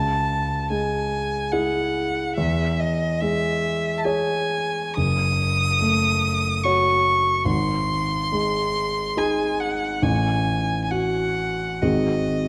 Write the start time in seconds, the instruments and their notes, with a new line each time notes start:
Already playing: grand piano C#2, violin A5
0.70 grand piano G#3, violin G#5
1.52 grand piano E4 G#4, violin F#5
2.36 grand piano E2, violin E5
2.80 violin D#5
3.21 grand piano G#3, violin E5
3.97 violin A5
4.04 grand piano G#4 C#5, violin G#5
4.96 grand piano F#1, violin D#6
5.81 grand piano A3
6.64 grand piano F#4 C#5, violin C#6
7.45 grand piano G#1, violin C6
8.32 grand piano G#3
9.17 grand piano D#4 G#4, violin G#5
9.60 violin F#5
10.02 grand piano A1, violin G#5
10.84 violin G#5
10.91 grand piano F#4, violin F#5
11.82 grand piano G#1 C4 F#4 G#4, violin D#5